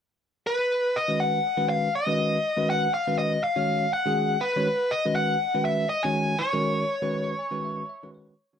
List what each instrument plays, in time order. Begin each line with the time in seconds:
0.47 lead electric guitar B4
0.96 lead electric guitar D#5
1.08 tine electric piano D#3 G#3 C#4 F#4 B4
1.20 lead electric guitar F#5
1.57 tine electric piano D#3 G#3 C#4 F#4 B4
1.69 lead electric guitar F5
1.95 lead electric guitar D#5
2.07 tine electric piano D#3 G#3 C#4 F#4 B4
2.57 tine electric piano D#3 G#3 C#4 F#4 B4
2.70 lead electric guitar F#5
2.94 lead electric guitar F5
3.07 tine electric piano D#3 G#3 C#4 F#4 B4
3.18 lead electric guitar D#5
3.44 lead electric guitar F5
3.56 tine electric piano D#3 G#3 C#4 F#4 C#5
3.93 lead electric guitar F#5
4.06 tine electric piano D#3 G#3 C#4 F#4 G#4
4.41 lead electric guitar B4
4.56 tine electric piano D#3 G#3 C#4 F#4 C#5
4.91 lead electric guitar D#5
5.05 tine electric piano D#3 G#3 C#4 F#4 B4
5.16 lead electric guitar F#5
5.54 tine electric piano D#3 G#3 C#4 F#4 B4
5.65 lead electric guitar E5
5.89 lead electric guitar D#5
6.03 tine electric piano D#3 G#3 C#4 F#4 C#5, lead electric guitar G#5
6.39 lead electric guitar C#5
6.53 tine electric piano D#3 G#3 C#4 F#4 A#4
7.02 tine electric piano D#3 G#3 C#4 F#4 B4
7.39 tine electric piano G#5
7.51 tine electric piano D#3 G#3 C#4 F#4 B4
7.65 tine electric piano E5
7.89 tine electric piano E5
8.03 tine electric piano D#3 G#3 C#4 F#4 B4
8.14 tine electric piano C#5
8.53 tine electric piano D#3 G#3 C#4 F#4 C#5